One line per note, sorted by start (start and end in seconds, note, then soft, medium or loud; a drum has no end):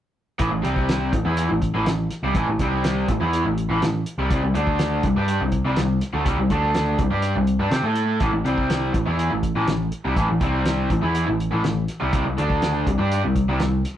0.39 0.51 A1 medium
0.39 0.50 A2 medium
0.39 0.51 E3 medium
0.39 kick loud
0.39 closed hi-hat medium
0.51 0.64 A1 medium
0.51 0.62 A2 medium
0.51 0.63 E3 medium
0.62 1.10 C2 medium
0.62 1.11 C3 medium
0.62 1.12 G3 medium
0.62 1.12 C4 loud
0.62 closed hi-hat medium
0.76 kick medium
0.89 snare loud
0.89 closed hi-hat loud
1.13 1.24 A1 medium
1.13 1.25 A2 medium
1.13 1.24 E3 medium
1.13 kick loud
1.13 closed hi-hat medium
1.25 1.48 E2 medium
1.25 1.48 E3 medium
1.25 1.49 B3 medium
1.25 1.49 E4 medium
1.37 closed hi-hat loud
1.49 1.73 A1 medium
1.49 1.69 A2 medium
1.49 1.69 E3 medium
1.62 kick medium
1.62 closed hi-hat medium
1.74 1.86 A1 medium
1.74 1.85 A2 medium
1.74 1.85 E3 medium
1.86 2.09 A1 medium
1.86 2.05 A2 medium
1.86 2.06 E3 medium
1.86 snare loud
1.86 closed hi-hat medium
2.11 snare soft
2.11 closed hi-hat medium
2.23 2.34 C2 medium
2.23 2.35 C3 medium
2.23 2.35 G3 medium
2.34 2.46 A1 medium
2.34 2.47 A2 medium
2.34 2.47 E3 loud
2.34 kick loud
2.34 closed hi-hat medium
2.48 2.59 A1 medium
2.48 2.60 A2 medium
2.48 2.60 E3 medium
2.59 3.05 C2 medium
2.59 3.08 C3 medium
2.59 3.08 G3 medium
2.59 3.09 C4 medium
2.59 kick medium
2.59 closed hi-hat medium
2.84 snare loud
2.84 closed hi-hat loud
3.08 3.20 A1 medium
3.08 3.20 A2 medium
3.08 3.19 E3 medium
3.08 kick loud
3.08 closed hi-hat medium
3.20 3.43 E2 medium
3.20 3.44 E3 medium
3.20 3.44 B3 medium
3.20 3.44 E4 medium
3.33 closed hi-hat loud
3.45 3.68 A1 medium
3.45 3.65 A2 medium
3.45 3.65 E3 medium
3.58 closed hi-hat medium
3.70 3.81 A1 medium
3.70 3.81 A2 medium
3.70 3.81 E3 medium
3.82 4.04 A1 medium
3.82 4.01 A2 medium
3.82 4.02 E3 medium
3.82 snare loud
3.82 closed hi-hat medium
4.06 closed hi-hat medium
4.18 4.29 C2 medium
4.18 4.30 C3 medium
4.18 4.30 G3 medium
4.30 4.42 C2 medium
4.30 4.42 C3 medium
4.30 4.42 G3 loud
4.30 kick loud
4.30 closed hi-hat medium
4.43 4.54 C2 medium
4.43 4.54 C3 medium
4.43 4.54 G3 medium
4.54 5.00 D2 medium
4.54 5.03 D3 medium
4.54 5.03 A3 medium
4.54 5.03 D4 loud
4.54 closed hi-hat medium
4.67 kick medium
4.79 snare loud
4.79 closed hi-hat medium
5.03 5.15 C2 medium
5.03 5.16 C3 medium
5.03 5.15 G3 medium
5.03 kick loud
5.03 closed hi-hat medium
5.16 5.39 G2 medium
5.16 5.40 G3 medium
5.16 5.40 D4 medium
5.16 5.40 G4 medium
5.28 closed hi-hat loud
5.40 5.63 C2 medium
5.40 5.60 C3 medium
5.40 5.60 G3 medium
5.52 kick medium
5.52 closed hi-hat medium
5.65 5.76 C2 medium
5.65 5.76 C3 medium
5.65 5.77 G3 loud
5.76 6.00 C2 medium
5.76 5.97 C3 medium
5.76 5.97 G3 medium
5.76 snare loud
5.76 closed hi-hat medium
6.01 snare soft
6.01 closed hi-hat medium
6.13 6.25 D2 medium
6.13 6.25 D3 medium
6.13 6.25 A3 loud
6.25 6.37 C2 medium
6.25 6.37 C3 medium
6.25 6.37 G3 loud
6.25 kick loud
6.25 closed hi-hat medium
6.38 6.49 C2 medium
6.38 6.50 C3 medium
6.38 6.51 G3 medium
6.50 6.95 D2 medium
6.50 6.98 D3 medium
6.50 6.99 A3 medium
6.50 6.99 D4 loud
6.50 kick medium
6.50 closed hi-hat medium
6.75 snare loud
6.75 closed hi-hat medium
6.99 7.10 C2 medium
6.99 7.11 C3 medium
6.99 7.09 G3 medium
6.99 kick loud
6.99 closed hi-hat medium
7.11 7.34 G2 medium
7.11 7.34 G3 medium
7.11 7.35 D4 medium
7.11 7.35 G4 medium
7.22 closed hi-hat medium
7.35 7.58 C2 medium
7.35 7.55 C3 medium
7.35 7.55 G3 medium
7.47 closed hi-hat medium
7.59 7.70 G2 medium
7.59 7.71 G3 medium
7.59 7.72 D4 loud
7.71 7.83 C3 medium
7.71 7.83 C4 medium
7.71 7.84 G4 loud
7.71 snare loud
7.71 closed hi-hat medium
7.83 8.18 A2 medium
7.83 8.21 A3 medium
7.83 8.21 E4 medium
7.83 8.21 A4 medium
7.96 closed hi-hat medium
8.20 8.31 A1 medium
8.20 8.31 A2 medium
8.20 8.32 E3 medium
8.20 kick loud
8.20 closed hi-hat medium
8.32 8.44 A1 medium
8.32 8.44 A2 medium
8.32 8.45 E3 medium
8.44 8.91 C2 loud
8.44 8.93 C3 medium
8.44 8.93 G3 medium
8.44 8.94 C4 loud
8.44 closed hi-hat medium
8.58 kick medium
8.70 snare loud
8.70 closed hi-hat medium
8.93 9.06 A1 medium
8.93 9.05 A2 medium
8.93 9.04 E3 medium
8.93 kick loud
8.93 closed hi-hat medium
9.06 9.29 E2 medium
9.06 9.30 E3 medium
9.06 9.30 B3 medium
9.06 9.31 E4 medium
9.19 closed hi-hat medium
9.31 9.54 A1 medium
9.31 9.50 A2 medium
9.31 9.51 E3 medium
9.43 kick medium
9.43 closed hi-hat medium
9.56 9.67 A1 medium
9.56 9.67 A2 medium
9.56 9.67 E3 medium
9.67 9.91 A1 medium
9.67 9.88 A2 medium
9.67 9.88 E3 medium
9.67 snare loud
9.67 closed hi-hat medium
9.92 closed hi-hat medium
10.05 10.16 C2 medium
10.05 10.16 C3 medium
10.05 10.17 G3 medium
10.16 10.28 A1 medium
10.16 10.28 A2 medium
10.16 10.28 E3 loud
10.16 kick loud
10.16 closed hi-hat medium
10.29 10.41 A1 medium
10.29 10.41 A2 medium
10.29 10.41 E3 medium
10.41 10.87 C2 loud
10.41 10.89 C3 medium
10.41 10.90 G3 medium
10.41 10.90 C4 loud
10.41 kick medium
10.41 closed hi-hat medium
10.66 snare loud
10.66 closed hi-hat loud
10.90 11.02 A1 medium
10.90 11.01 A2 medium
10.90 11.00 E3 medium
10.90 kick loud
10.90 closed hi-hat medium
11.01 11.26 E2 medium
11.01 11.26 E3 medium
11.01 11.26 B3 medium
11.01 11.26 E4 medium
11.15 closed hi-hat loud
11.27 11.51 A1 medium
11.27 11.47 A2 medium
11.27 11.47 E3 medium
11.40 closed hi-hat medium
11.51 11.64 A1 medium
11.51 11.63 A2 medium
11.51 11.63 E3 loud
11.64 11.87 A1 medium
11.64 11.84 A2 medium
11.64 11.84 E3 medium
11.64 snare loud
11.64 closed hi-hat medium
11.88 snare soft
11.88 closed hi-hat medium
12.00 12.13 C2 medium
12.00 12.11 C3 medium
12.00 12.12 G3 medium
12.12 12.24 C2 medium
12.12 12.24 C3 medium
12.12 12.25 G3 loud
12.12 kick loud
12.12 closed hi-hat medium
12.26 12.37 C2 medium
12.26 12.37 C3 medium
12.26 12.37 G3 medium
12.37 12.84 D2 loud
12.37 12.86 D3 medium
12.37 12.86 A3 medium
12.37 12.86 D4 loud
12.37 closed hi-hat medium
12.50 kick medium
12.62 snare loud
12.62 closed hi-hat medium
12.87 12.98 C2 medium
12.87 12.99 C3 medium
12.87 12.97 G3 medium
12.87 kick loud
12.87 closed hi-hat medium
12.98 13.22 G2 medium
12.98 13.22 G3 medium
12.98 13.22 D4 medium
12.98 13.23 G4 loud
13.12 closed hi-hat medium
13.23 13.47 C2 medium
13.23 13.43 C3 medium
13.23 13.43 G3 medium
13.36 kick medium
13.36 closed hi-hat medium
13.48 13.60 C2 medium
13.48 13.59 C3 medium
13.48 13.59 G3 medium
13.60 13.83 C2 medium
13.60 13.80 C3 medium
13.60 13.80 G3 medium
13.60 snare loud
13.60 closed hi-hat medium
13.85 snare soft
13.85 closed hi-hat medium